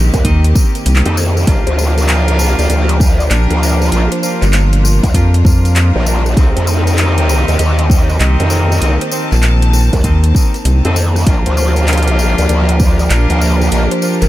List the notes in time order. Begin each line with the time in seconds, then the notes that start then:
Already playing: A#1 D#3 A#3 C4 G4
0.01 cross-stick
0.04 cross-stick
0.14 D#2 A#4, kick, cross-stick, closed hi-hat, tambourine
0.21 D#2 C4 D#4 A#4, kick, cross-stick, closed hi-hat, tambourine
0.25 G4
0.44 closed hi-hat
0.55 C4 D#4 G4 A#4, kick, tambourine
0.75 closed hi-hat, tambourine
0.86 C2, closed hi-hat, tambourine
0.96 clap
1.06 F2 C4 D#4 G4 A4, closed hi-hat
1.17 tambourine
1.37 tambourine
1.47 A#1 F3 D4 F4 G4 A#4, kick, closed hi-hat, tambourine
1.67 D2 C5, closed hi-hat
1.77 D4 F4 G4 A#4 C5, tambourine
1.98 closed hi-hat, tambourine
2.09 clap, closed hi-hat, tambourine
2.28 C#2, closed hi-hat
2.39 tambourine
2.59 D2 D5, closed hi-hat, tambourine
2.70 D2 D5, closed hi-hat, tambourine
2.89 closed hi-hat
3.00 D4 F4 G4 A#4, kick, tambourine
3.20 D5, tambourine
3.31 A#1 D4 F4 G4 A#4 D5, clap, closed hi-hat, tambourine
3.51 D2, closed hi-hat
3.63 tambourine
3.82 tambourine
3.92 A#1 D4 F4 G4 A#4, closed hi-hat, tambourine
4.12 C5, closed hi-hat
4.23 D4 F4 G4 A#4 C5, tambourine
4.42 G1 A#4, clap, closed hi-hat, tambourine
4.53 clap, closed hi-hat, tambourine
4.73 closed hi-hat
4.84 cross-stick, tambourine
5.03 D2, kick, closed hi-hat, tambourine
5.14 F2 D4 F4 G4 A#4, kick, closed hi-hat, tambourine
5.34 closed hi-hat
5.45 F2 D4 F4 G4 A#4, kick, tambourine
5.65 closed hi-hat, tambourine
5.76 clap, closed hi-hat, tambourine
5.96 A#1
6.06 D4 F4 G4 A#4, tambourine
6.26 cross-stick, tambourine
6.33 C2 D#4 G4, kick, cross-stick
6.37 D#3 A#3 C4 A#4, cross-stick, closed hi-hat, tambourine
6.43 cross-stick
6.47 cross-stick
6.56 F2 C5, closed hi-hat
6.67 C4 D#4 G4 A#4 C5, tambourine
6.87 closed hi-hat, tambourine
6.98 clap, closed hi-hat, tambourine
7.18 closed hi-hat
7.29 tambourine
7.48 D#2 D#5, closed hi-hat, tambourine
7.59 D#2 D#5, closed hi-hat, tambourine
7.79 closed hi-hat
7.90 C4 D#4 G4 A#4, kick, tambourine
8.09 D#5, tambourine
8.20 C2 C4 D#4 G4 A#4 D#5, clap, closed hi-hat, tambourine
8.40 F2, closed hi-hat
8.50 tambourine
8.71 D#5, tambourine
8.81 C2 C4 D#4 G4 A#4 D#5 A5, closed hi-hat, tambourine
9.01 C5, closed hi-hat
9.12 C4 D#4 G4 A#4 C5, tambourine
9.32 A#1, clap, tambourine
9.43 clap, closed hi-hat, tambourine
9.62 closed hi-hat
9.73 cross-stick, tambourine
9.93 D#2 A#4, kick, closed hi-hat, tambourine
10.04 D#2 C4 D#4 G4 A#4, kick, closed hi-hat, tambourine
10.24 closed hi-hat
10.35 C4 D#4 G4 A#4, kick, tambourine
10.54 closed hi-hat, tambourine
10.65 C2, closed hi-hat, tambourine
10.85 F2 C4 D#4 G4 A4, closed hi-hat
10.96 tambourine
11.16 cross-stick, tambourine
11.27 A#1 F3 A#3 D4 F4 G4 A#4, kick, closed hi-hat, tambourine
11.46 D2 C5, closed hi-hat
11.57 D4 F4 G4 A#4 C5, tambourine
11.76 closed hi-hat, tambourine
11.88 clap, closed hi-hat, tambourine
11.93 closed hi-hat
11.98 closed hi-hat
12.03 closed hi-hat
12.08 closed hi-hat
12.19 tambourine
12.38 D2 D5, closed hi-hat, tambourine
12.49 D2 D5, closed hi-hat, tambourine
12.69 closed hi-hat
12.80 D4 F4 G4 A#4, kick, tambourine
12.99 D5, tambourine
13.10 A#1 D4 F4 G4 A#4 D5, clap, closed hi-hat, tambourine
13.30 D2, closed hi-hat
13.41 tambourine
13.61 tambourine
13.71 A#1 D4 F4 G4 A#4, closed hi-hat, tambourine
13.91 C5, closed hi-hat
14.02 D4 F4 G4 A#4 C5, tambourine
14.22 G1 A#4, clap, closed hi-hat, tambourine